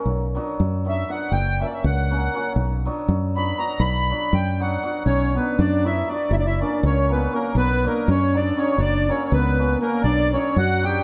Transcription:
0.00 0.11 F#3 medium
0.05 0.38 B1 medium
0.35 0.84 F#3 medium
0.35 0.50 B3 medium
0.35 0.51 D4 medium
0.35 0.51 F#4 medium
0.60 1.03 F#2 medium
0.85 1.07 F#3 medium
0.85 1.00 B3 medium
0.85 1.00 D4 medium
0.85 1.01 F#4 medium
0.89 1.11 E5 loud
1.08 1.36 F#3 medium
1.08 1.23 B3 medium
1.08 1.23 D4 soft
1.08 1.23 F#4 medium
1.08 1.33 F#5 medium
1.32 1.63 F#1 medium
1.32 1.62 G5 loud
1.60 2.09 F#3 medium
1.60 1.76 A#3 medium
1.60 1.76 C#4 medium
1.60 1.76 F#4 medium
1.60 1.67 E5 medium
1.67 1.73 D5 medium
1.73 1.84 E5 medium
1.84 2.27 C#2 loud
1.84 2.53 F#5 medium
2.11 2.33 F#3 medium
2.11 2.25 A#3 medium
2.11 2.25 C#4 medium
2.11 2.26 F#4 medium
2.34 2.61 F#3 medium
2.34 2.48 A#3 medium
2.34 2.49 C#4 medium
2.34 2.49 F#4 medium
2.56 2.88 B1 medium
2.85 3.34 F#3 medium
2.85 3.01 B3 medium
2.85 3.01 D4 medium
2.85 3.01 F#4 medium
3.08 3.52 F#2 loud
3.36 3.57 F#3 medium
3.36 3.51 B3 medium
3.36 3.51 D4 medium
3.36 3.51 F#4 medium
3.36 3.59 B5 loud
3.58 3.86 F#3 medium
3.58 3.73 B3 medium
3.58 3.73 D4 medium
3.58 3.73 F#4 medium
3.58 3.82 A#5 loud
3.80 4.12 B1 medium
3.80 4.35 B5 loud
4.10 4.59 F#3 medium
4.10 4.25 B3 soft
4.10 4.26 D4 medium
4.10 4.26 F#4 medium
4.33 4.76 F#2 loud
4.33 4.62 G5 medium
4.60 4.81 F#3 medium
4.60 4.75 B3 medium
4.60 4.75 D4 medium
4.60 4.75 F#4 medium
4.60 5.03 F#5 medium
4.83 5.11 F#3 medium
4.83 4.97 B3 medium
4.83 4.98 D4 medium
4.83 4.98 F#4 medium
5.05 5.38 B1 medium
5.05 5.33 C#4 medium
5.05 5.36 C#5 loud
5.34 5.83 F#3 medium
5.34 5.50 B3 soft
5.34 5.57 B3 medium
5.34 5.50 D4 medium
5.34 5.50 F#4 medium
5.34 5.60 B4 medium
5.58 6.02 F#2 medium
5.58 5.83 D4 medium
5.58 5.87 D5 medium
5.84 6.06 F#3 medium
5.84 5.99 B3 medium
5.84 6.00 D4 medium
5.84 6.07 E4 medium
5.84 6.00 F#4 medium
5.84 6.09 E5 medium
6.08 6.36 F#3 medium
6.08 6.22 B3 medium
6.08 6.23 D4 medium
6.08 6.30 D4 medium
6.08 6.23 F#4 medium
6.08 6.32 D5 medium
6.31 6.62 F#1 loud
6.31 6.35 E4 medium
6.31 6.36 E5 loud
6.38 6.45 D4 medium
6.38 6.46 D5 loud
6.46 6.60 E4 medium
6.46 6.60 E5 loud
6.60 7.08 F#3 medium
6.60 6.75 A#3 medium
6.60 6.75 C#4 medium
6.60 6.83 D4 medium
6.60 6.76 F#4 medium
6.60 6.84 D5 medium
6.83 7.26 C#2 medium
6.83 7.10 C#4 medium
6.83 7.12 C#5 medium
7.09 7.30 F#3 medium
7.09 7.24 A#3 medium
7.09 7.32 B3 medium
7.09 7.24 C#4 medium
7.09 7.24 F#4 medium
7.09 7.34 B4 medium
7.32 7.60 F#3 medium
7.32 7.47 A#3 medium
7.32 7.54 A#3 medium
7.32 7.47 C#4 medium
7.32 7.47 F#4 medium
7.32 7.56 A#4 medium
7.55 7.87 B1 medium
7.55 7.83 B3 medium
7.55 7.86 B4 loud
7.84 8.33 F#3 medium
7.84 8.07 A#3 medium
7.84 7.99 B3 medium
7.84 7.99 D4 medium
7.84 8.00 F#4 medium
7.84 8.10 A#4 medium
8.08 8.51 F#2 medium
8.08 8.33 C#4 medium
8.08 8.36 C#5 loud
8.34 8.55 F#3 medium
8.34 8.48 B3 medium
8.34 8.49 D4 medium
8.34 8.57 D4 medium
8.34 8.49 F#4 medium
8.34 8.59 D5 medium
8.57 8.84 F#3 medium
8.57 8.71 B3 medium
8.57 8.78 C#4 medium
8.57 8.71 D4 medium
8.57 8.72 F#4 medium
8.57 8.81 C#5 medium
8.78 9.10 F#1 medium
8.78 9.07 D4 medium
8.78 9.11 D5 loud
9.08 9.57 F#3 medium
9.08 9.24 A#3 medium
9.08 9.24 C#4 medium
9.08 9.24 F#4 medium
9.08 9.24 C#5 medium
9.24 9.31 C#4 medium
9.24 9.32 C#5 medium
9.32 9.75 C#2 loud
9.32 9.78 B3 medium
9.32 9.78 B4 loud
9.58 9.80 F#3 medium
9.58 9.73 A#3 medium
9.58 9.73 C#4 medium
9.58 9.73 F#4 medium
9.81 10.09 F#3 medium
9.81 10.02 A#3 medium
9.81 9.95 A#3 medium
9.81 9.96 C#4 medium
9.81 9.96 F#4 medium
9.81 10.03 A#4 medium
10.03 10.35 B1 medium
10.03 10.31 D4 medium
10.03 10.31 D5 loud
10.33 10.81 F#3 medium
10.33 10.48 B3 medium
10.33 10.55 C#4 medium
10.33 10.48 D4 medium
10.33 10.48 F#4 medium
10.33 10.57 C#5 medium
10.56 10.99 F#2 medium
10.56 10.82 F#4 medium
10.56 10.85 F#5 loud
10.82 11.03 F#3 medium
10.82 10.97 B3 medium
10.82 10.97 D4 medium
10.82 10.97 F#4 medium
10.82 11.04 G4 medium
10.82 11.04 G5 loud

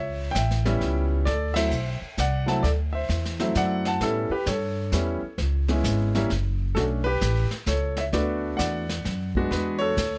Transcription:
0.00 0.33 C#2 medium
0.00 0.32 C#5 medium
0.00 0.30 E5 medium
0.31 0.79 A1 medium
0.31 1.06 E5 medium
0.31 1.05 G5 medium
0.31 kick soft
0.31 hi-hat pedal medium
0.36 snare medium
0.51 snare soft
0.65 1.23 G3 medium
0.65 1.23 B3 medium
0.65 1.24 C#4 medium
0.65 1.24 E4 medium
0.65 snare soft
0.81 1.25 C#2 medium
0.81 kick soft
0.81 snare soft
1.25 1.70 D2 medium
1.25 1.55 A4 medium
1.25 1.54 D5 medium
1.25 brush sweep medium
1.25 kick soft
1.25 snare soft
1.54 1.70 F#3 medium
1.54 1.71 A3 medium
1.54 1.71 C4 medium
1.54 1.71 E4 medium
1.54 1.99 C5 medium
1.54 1.97 E5 loud
1.54 snare medium
1.54 ride medium
1.71 1.99 B1 medium
1.71 hi-hat pedal medium
2.01 muted upright bass stroke soft
2.18 2.62 C2 medium
2.18 2.46 D5 medium
2.18 2.47 F#5 medium
2.18 kick soft
2.18 snare medium
2.18 hi-hat pedal medium
2.46 2.61 F#3 medium
2.46 2.62 A3 medium
2.46 2.62 C4 medium
2.46 2.62 E4 medium
2.46 2.63 F#5 medium
2.46 2.63 A5 medium
2.46 snare soft
2.63 3.08 D2 medium
2.63 2.70 A4 medium
2.63 2.70 D5 medium
2.63 brush sweep soft
2.63 kick soft
2.63 snare soft
2.93 3.37 C5 medium
2.93 3.36 E5 medium
3.09 3.53 E2 medium
3.09 kick soft
3.09 snare soft
3.25 snare soft
3.40 3.98 F#3 medium
3.40 3.98 A3 medium
3.40 3.98 C4 medium
3.40 3.99 E4 medium
3.40 snare soft
3.55 3.99 F#2 medium
3.55 3.84 D5 medium
3.55 3.85 F#5 loud
3.55 kick soft
3.55 snare medium
3.55 hi-hat pedal medium
3.85 4.00 F#5 medium
3.85 4.01 A5 medium
3.85 snare soft
4.00 4.28 A2 medium
4.00 4.29 G3 medium
4.00 4.29 B3 medium
4.00 4.29 C#4 medium
4.00 4.29 E4 medium
4.00 4.30 A4 medium
4.00 brush sweep soft
4.00 kick soft
4.00 snare soft
4.29 4.46 G4 medium
4.29 4.46 B4 medium
4.29 muted upright bass stroke soft
4.46 4.91 G2 medium
4.46 5.35 A4 medium
4.46 6.26 C#5 medium
4.46 kick soft
4.46 snare medium
4.46 hi-hat pedal medium
4.92 5.20 E2 medium
4.92 5.19 G3 medium
4.92 5.19 B3 medium
4.92 5.20 C#4 medium
4.92 5.20 E4 medium
4.92 kick soft
4.92 snare medium
4.92 hi-hat pedal medium
5.22 muted upright bass stroke soft
5.38 5.82 C#2 medium
5.38 brush sweep soft
5.38 kick soft
5.38 snare soft
5.68 6.11 G#3 medium
5.68 6.11 B3 medium
5.68 6.12 C#4 medium
5.68 6.12 E4 medium
5.68 snare soft
5.84 6.28 G#1 medium
5.84 kick soft
5.84 snare medium
5.84 hi-hat pedal medium
6.15 6.29 G3 medium
6.15 6.29 A#3 medium
6.15 6.29 C#4 medium
6.15 6.29 E4 medium
6.15 snare soft
6.30 6.74 F#1 medium
6.30 kick soft
6.30 snare soft
6.75 7.20 B1 medium
6.75 7.03 A3 medium
6.75 7.03 C#4 medium
6.75 7.03 D4 soft
6.75 6.83 F#4 medium
6.75 6.82 A4 medium
6.75 brush sweep soft
6.75 kick soft
6.75 snare soft
7.04 7.48 G4 medium
7.04 7.47 B4 loud
7.21 7.49 A1 medium
7.21 kick soft
7.21 snare medium
7.21 hi-hat pedal medium
7.51 snare soft
7.66 8.11 C#2 medium
7.66 7.95 A4 medium
7.66 7.95 C#5 medium
7.66 kick soft
7.66 snare medium
7.66 hi-hat pedal medium
7.97 8.03 C#5 medium
7.97 8.03 E5 medium
7.97 snare soft
8.12 8.57 D2 medium
8.12 8.83 A3 medium
8.12 8.83 B3 medium
8.12 8.83 D4 medium
8.12 8.83 F#4 medium
8.12 8.56 B4 medium
8.12 8.57 D5 medium
8.12 brush sweep soft
8.12 kick soft
8.12 snare soft
8.57 9.03 E2 medium
8.57 9.30 D5 medium
8.57 9.30 F#5 medium
8.57 kick soft
8.57 snare medium
8.57 hi-hat pedal medium
8.89 snare soft
9.05 9.49 F#2 medium
9.05 kick soft
9.05 snare soft
9.35 9.94 G#3 medium
9.35 9.94 B3 medium
9.35 9.94 D4 medium
9.35 9.94 F#4 medium
9.35 kick soft
9.51 9.95 E2 medium
9.51 9.79 G#4 medium
9.51 9.82 B4 medium
9.51 brush sweep soft
9.51 kick soft
9.51 snare soft
9.79 10.18 A4 medium
9.79 10.18 C#5 loud
9.97 10.18 D2 medium
9.97 kick soft
9.97 snare medium
9.97 hi-hat pedal medium

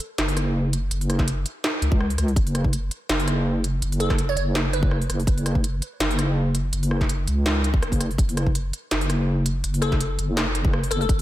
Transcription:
0.00 closed hi-hat medium
0.18 0.90 F#1 loud
0.18 snare loud
0.18 closed hi-hat medium
0.28 open hi-hat medium
0.37 cross-stick medium
0.37 closed hi-hat medium
0.73 closed hi-hat medium
0.91 1.44 F#1 loud
0.91 closed hi-hat medium
1.01 open hi-hat medium
1.10 cross-stick soft
1.10 closed hi-hat medium
1.19 kick medium
1.19 snare soft
1.28 closed hi-hat medium
1.46 closed hi-hat medium
1.64 snare loud
1.64 open hi-hat medium
1.82 2.17 C#2 loud
1.82 closed hi-hat medium
1.92 kick loud
2.01 cross-stick medium
2.10 open hi-hat medium
2.18 2.35 C#2 loud
2.18 cross-stick soft
2.18 closed hi-hat medium
2.28 open hi-hat soft
2.36 2.90 F#1 medium
2.36 kick loud
2.36 closed hi-hat medium
2.47 open hi-hat medium
2.55 cross-stick soft
2.55 closed hi-hat medium
2.65 kick medium
2.73 closed hi-hat medium
2.91 closed hi-hat medium
3.09 3.81 F#1 loud
3.09 snare loud
3.09 closed hi-hat medium
3.20 open hi-hat medium
3.28 cross-stick soft
3.28 closed hi-hat medium
3.64 closed hi-hat medium
3.82 4.35 F#1 loud
3.82 closed hi-hat medium
3.92 open hi-hat medium
4.00 4.51 A4 medium
4.00 closed hi-hat medium
4.10 kick medium
4.10 cross-stick medium
4.10 snare soft
4.18 closed hi-hat medium
4.29 4.34 C#5 medium
4.36 5.08 F#1 medium
4.36 4.43 C#5 medium
4.36 closed hi-hat medium
4.55 snare loud
4.55 open hi-hat medium
4.73 5.24 B4 medium
4.73 closed hi-hat medium
4.83 kick loud
4.91 cross-stick medium
5.02 open hi-hat medium
5.09 5.26 F#1 medium
5.09 cross-stick soft
5.09 closed hi-hat medium
5.20 open hi-hat soft
5.27 5.81 F#1 loud
5.27 kick loud
5.27 closed hi-hat medium
5.38 open hi-hat medium
5.46 cross-stick medium
5.46 closed hi-hat medium
5.55 kick medium
5.64 closed hi-hat medium
5.82 closed hi-hat medium
6.00 6.71 F#1 loud
6.00 snare loud
6.00 closed hi-hat medium
6.11 open hi-hat medium
6.19 cross-stick medium
6.19 closed hi-hat medium
6.55 closed hi-hat medium
6.73 7.26 F#1 loud
6.73 closed hi-hat medium
6.83 open hi-hat medium
6.91 cross-stick medium
7.01 kick medium
7.01 snare soft
7.09 closed hi-hat medium
7.27 7.81 C#2 loud
7.27 closed hi-hat medium
7.46 snare loud
7.46 open hi-hat medium
7.64 closed hi-hat medium
7.74 kick loud
7.82 8.17 F#1 loud
7.82 cross-stick medium
7.82 closed hi-hat soft
7.92 kick medium
7.92 open hi-hat medium
8.01 cross-stick soft
8.01 closed hi-hat medium
8.11 open hi-hat soft
8.18 8.72 F#1 loud
8.18 kick loud
8.18 closed hi-hat medium
8.29 open hi-hat medium
8.37 cross-stick medium
8.37 closed hi-hat medium
8.47 kick medium
8.55 closed hi-hat medium
8.73 closed hi-hat medium
8.91 9.63 F#1 loud
8.91 snare loud
8.91 closed hi-hat medium
9.01 open hi-hat medium
9.10 cross-stick medium
9.10 closed hi-hat medium
9.46 closed hi-hat medium
9.64 10.17 F#1 loud
9.64 closed hi-hat medium
9.74 open hi-hat medium
9.82 10.33 A4 medium
9.82 cross-stick medium
9.82 closed hi-hat medium
9.92 kick medium
9.92 snare soft
10.01 closed hi-hat medium
10.18 10.90 F#1 loud
10.18 closed hi-hat medium
10.37 snare loud
10.37 open hi-hat medium
10.55 closed hi-hat medium
10.65 kick loud
10.73 cross-stick medium
10.83 open hi-hat medium
10.91 11.08 F#1 loud
10.91 10.97 A4 medium
10.91 cross-stick soft
10.91 closed hi-hat medium
11.01 11.06 A4 medium
11.01 open hi-hat soft
11.09 11.22 F#1 loud
11.09 kick loud
11.09 closed hi-hat medium

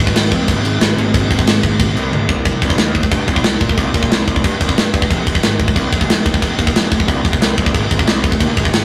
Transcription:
0.00 0.13 G#1 medium
0.07 kick medium
0.15 0.29 G#1 loud
0.15 snare loud
0.15 crash loud
0.32 0.46 F2 medium
0.32 kick medium
0.32 crash medium
0.48 0.62 G#1 medium
0.48 kick loud
0.48 crash medium
0.63 0.78 G#1 medium
0.63 crash medium
0.80 0.94 G#1 medium
0.80 snare loud
0.80 crash medium
0.96 1.11 G#1 medium
0.96 crash medium
1.14 1.28 G#1 medium
1.14 kick loud
1.14 crash medium
1.31 1.44 G#1 medium
1.31 kick medium
1.31 crash medium
1.39 kick medium
1.45 1.60 G#1 medium
1.45 snare loud
1.45 crash medium
1.63 1.77 G#1 medium
1.63 kick medium
1.63 crash medium
1.79 1.94 G#1 medium
1.79 kick loud
1.79 crash medium
1.95 2.10 C2 medium
1.95 crash medium
2.11 2.26 G#1 medium
2.11 high tom medium
2.29 2.43 C2 medium
2.29 kick medium
2.45 2.56 C2 medium
2.45 kick loud
2.45 crash medium
2.62 2.73 C2 medium
2.62 kick medium
2.62 crash medium
2.70 kick medium
2.77 3.00 D#2 medium
2.77 snare loud
2.77 crash medium
2.95 kick medium
2.95 crash medium
3.03 kick medium
3.12 3.23 G2 medium
3.12 kick medium
3.12 crash medium
3.28 3.39 C2 medium
3.28 kick medium
3.28 crash medium
3.36 kick medium
3.43 3.55 C2 medium
3.43 snare loud
3.43 crash medium
3.61 3.72 A#2 medium
3.61 kick medium
3.61 crash medium
3.69 kick medium
3.77 3.89 C2 medium
3.77 kick medium
3.77 crash medium
3.94 4.05 A#2 medium
3.94 kick medium
3.94 crash medium
4.03 kick medium
4.10 4.21 C2 medium
4.10 snare loud
4.10 crash medium
4.27 4.38 C2 medium
4.27 kick medium
4.27 crash medium
4.36 kick medium
4.44 4.55 G2 medium
4.44 kick medium
4.44 crash medium
4.61 4.72 C2 medium
4.61 kick medium
4.61 crash medium
4.69 kick medium
4.76 4.88 G2 medium
4.76 snare loud
4.76 crash medium
4.94 5.05 G2 loud
4.94 kick medium
4.94 crash medium
5.02 kick medium
5.10 5.21 F1 loud
5.10 kick medium
5.10 crash medium
5.27 5.38 F1 medium
5.27 kick medium
5.27 crash medium
5.35 kick medium
5.43 5.66 G#1 medium
5.43 snare loud
5.43 crash medium
5.59 kick medium
5.59 crash medium
5.68 kick medium
5.76 5.87 C2 medium
5.76 kick medium
5.76 crash medium
5.92 6.03 F1 medium
5.92 kick medium
5.92 crash medium
6.01 kick medium
6.08 6.20 F1 loud
6.08 snare loud
6.08 crash medium
6.25 6.37 D#2 medium
6.25 kick medium
6.25 crash medium
6.34 kick medium
6.42 6.53 F1 medium
6.42 kick medium
6.42 crash medium
6.59 6.70 D#2 medium
6.59 kick medium
6.59 crash medium
6.67 kick medium
6.74 6.86 F1 medium
6.74 snare loud
6.74 crash medium
6.92 7.03 F1 medium
6.92 kick medium
6.92 crash medium
7.00 kick medium
7.08 7.19 C2 medium
7.08 kick medium
7.08 crash medium
7.25 7.36 F1 medium
7.25 kick medium
7.25 crash medium
7.33 kick medium
7.40 7.52 C2 medium
7.40 snare loud
7.40 crash medium
7.58 7.69 C2 medium
7.58 kick medium
7.58 crash medium
7.66 kick medium
7.74 7.85 G#1 medium
7.74 kick medium
7.74 crash medium
7.91 8.02 G#1 medium
7.91 kick medium
7.91 crash medium
7.99 kick medium
8.07 8.30 C2 medium
8.07 snare loud
8.07 crash medium
8.24 kick medium
8.24 crash medium
8.32 kick medium
8.40 8.51 D#2 medium
8.40 kick medium
8.40 crash medium
8.57 8.68 G#1 medium
8.57 kick medium
8.57 crash medium
8.65 kick medium
8.73 8.85 G#1 medium
8.73 snare loud
8.73 crash medium

